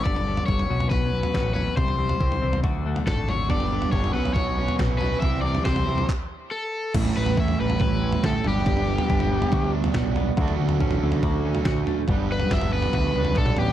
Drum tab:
CC |----------------|----------------|----------------|----------------|
CP |----------------|----------------|----------------|--------x-------|
SD |------------o---|------------o---|------------o---|----o-----------|
T2 |------------o---|------------o---|------------o---|----------------|
FT |oo-o-o-oo--o--o-|oo-o-o-oo--o--o-|oo-o-o-oo--o--o-|o--o-o-o--------|
BD |o---o---o---o---|o---o---o---o---|o---o---o---o---|o---o---o-------|

CC |x---------------|----------------|----------------|----------------|
CP |----------------|----------------|----------------|----------------|
SD |------------o---|------------o---|------------o---|----o-----------|
T2 |------------o---|------------o---|------------o---|------------oo--|
FT |oo-o-o-oo--o--o-|oo-o-o-oo--o--o-|oo-o-o-oo--o--o-|o--o-o-oo--o--o-|
BD |o---o---o---o---|o---o---o---o---|o---o---o---o---|o---o---o---o---|